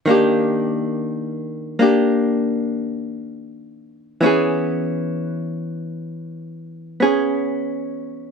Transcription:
0.06 D#3 A#3 D4
0.10 G4
1.79 A#3 D4 G4
4.21 E3 B3 C#4
4.26 G#4
7.00 B3 C#4 G#4

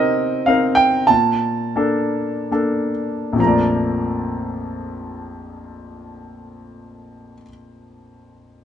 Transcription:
Already playing: C3 C4 D#4 A#4 D#5 G5
0.46 C4 D#4 A#4 F5
0.75 G5
1.07 A#2 A5
1.76 A#3 D4 A4
2.51 A#3 D4 A4
3.33 A#1 F2
3.38 F3 A#3 A#5
3.44 A3 D5

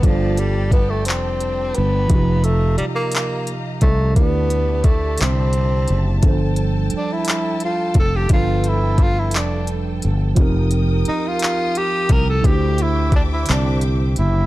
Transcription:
Already playing: G4 D5 A5
0.01 G1 G3 D4 F4 G5, kick, closed hi-hat
0.05 F3 A4 D5
0.37 G3, closed hi-hat
0.71 B3, kick, closed hi-hat
0.90 A3
1.05 F1 C4, clap, closed hi-hat
1.40 closed hi-hat
1.75 G1 B3, closed hi-hat
2.08 F1 C3 F3 D#4 D#5 F5 A#5, kick, closed hi-hat
2.13 F4 G4
2.44 A3, closed hi-hat
2.78 G3, muted fretless electric bass stroke, closed hi-hat
2.95 A#3
3.12 clap, closed hi-hat
3.47 closed hi-hat
3.81 C2 A3, kick, closed hi-hat
4.16 D2 D3 B3 D4 E4 G4 D5 E5 A5, kick, closed hi-hat
4.20 G4 D5
4.50 closed hi-hat
4.84 A3, kick, closed hi-hat
5.18 C2 C4, clap, closed hi-hat
5.53 closed hi-hat
5.88 F#1, closed hi-hat
6.22 G1 F3 G3 D4 A4 G5, kick, closed hi-hat
6.26 A4 C5
6.56 closed hi-hat
6.90 muted fretless electric bass stroke, closed hi-hat
6.97 D4
7.13 E4
7.25 clap, closed hi-hat
7.60 closed hi-hat
7.65 F4
7.94 F1, kick, closed hi-hat
7.99 A4
8.17 G4
8.29 G1 F3 G3 D4 F4, kick, closed hi-hat
8.34 A4 B4
8.64 closed hi-hat
8.68 E4
8.98 kick, closed hi-hat
9.02 F4
9.19 E4
9.31 clap, closed hi-hat
9.36 F1 D4
9.67 closed hi-hat
10.02 G1, closed hi-hat
10.35 F1 F3 C4 D#4 A#4, kick, closed hi-hat
10.40 G4 A#4 G5 D#6
10.71 closed hi-hat
11.05 D#4, muted fretless electric bass stroke, closed hi-hat
11.28 F4
11.39 clap, closed hi-hat
11.75 G4, closed hi-hat
12.09 C2 A#4, kick, closed hi-hat
12.30 A4
12.41 D3 D4 E4, kick, closed hi-hat
12.45 D2 G4 B4 C5 E5 D6
12.54 C5
12.78 closed hi-hat
12.82 E4
13.12 D4, kick, closed hi-hat
13.33 E4
13.46 C2, clap, closed hi-hat
13.52 D4
13.81 closed hi-hat
14.16 F#1 E4, closed hi-hat

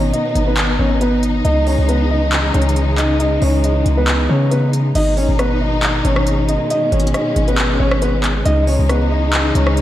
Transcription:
Already playing: G#1 B2 D#3 B3 D#4
0.13 D#4 D#5, closed hi-hat
0.35 G#1, closed hi-hat
0.47 B3 B4
0.57 clap, closed hi-hat
0.79 G#1 C#4 C#5
1.01 B3 B4, closed hi-hat
1.23 closed hi-hat
1.44 C#2 C#3 E3 G#3 D#4 D#5, closed hi-hat
1.67 C#4 C#5, open hi-hat
1.78 C#2
1.89 B3 B4, closed hi-hat
2.11 D#4 D#5
2.32 clap, closed hi-hat
2.54 C#2 C#4 C#5, closed hi-hat
2.62 closed hi-hat
2.69 closed hi-hat
2.76 closed hi-hat
2.98 D#4 D#5, clap, closed hi-hat
3.19 D#4 D#5, closed hi-hat
3.42 C#2 C#4 C#5, open hi-hat
3.64 D#4 D#5, closed hi-hat
3.86 C#2, closed hi-hat
3.97 B3 B4
4.08 clap, closed hi-hat
4.29 C#3 C#4 C#5
4.51 B3 B4, closed hi-hat
4.73 closed hi-hat
4.95 G#1 B2 D#3 G#3 D#4 D#5, closed hi-hat, crash
5.17 C#4 C#5, open hi-hat
5.29 G#1
5.39 B3 B4, cross-stick, closed hi-hat
5.61 D#4 D#5
5.83 clap, closed hi-hat
6.05 G#1 C#4 C#5, closed hi-hat
6.16 cross-stick
6.27 closed hi-hat
6.49 D#4 D#5, closed hi-hat
6.70 C#4 D#4 D#5, closed hi-hat
6.92 G#1 C#4 C#5, closed hi-hat, open hi-hat
7.00 closed hi-hat
7.07 closed hi-hat
7.14 D#4 D#5, cross-stick, closed hi-hat
7.36 G#1, closed hi-hat
7.48 B3 B4, closed hi-hat
7.58 clap, closed hi-hat
7.80 G#1 C#4 C#5
7.91 cross-stick
8.02 B3 B4, closed hi-hat
8.24 clap, closed hi-hat
8.45 C#2 C#3 E3 D#4 D#5, closed hi-hat
8.67 C#4 C#5, open hi-hat
8.79 C#2
8.89 B3 B4, cross-stick, closed hi-hat
9.11 D#4 D#5
9.33 clap, closed hi-hat
9.55 C#2 C#4 C#5, closed hi-hat
9.67 cross-stick
9.77 closed hi-hat

